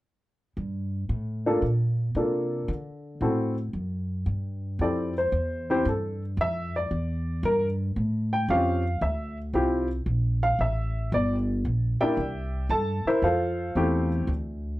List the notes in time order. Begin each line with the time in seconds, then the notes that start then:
0.57 G2
1.09 A2
1.46 A#3 D4 F4 A4
1.62 A#2
2.15 C3 A#3 D4 F4 A4
2.68 D3
3.21 A2 C4 E4 F#4 A4
3.73 F#2
4.26 G2
4.79 F2 C4 E4 G4 A4 D5
5.18 C5
5.32 E2
5.70 C4 E4 G4 C5
5.85 G2 A4
6.37 F2 E5
6.76 D5
6.91 E2
7.43 G2 A#4
7.96 A2
8.33 G5
8.49 F2 C4 C#4 F4 G4 F5
9.01 D2 E5
9.53 C2 C4 E4 F4 G4
10.06 A#1
10.43 F5
10.59 A1 E5
11.12 G1 D5
11.65 A#1
12.01 A#3 D4 E4 G4 D5 E5 G5, muted upright bass stroke
12.17 C2
12.69 G2 A4 A5
13.05 E4 A#4 C5 E5, muted upright bass stroke
13.22 F2 F4 A4 C5 F5
13.75 E2 A3 C4 E4 G4
14.27 D2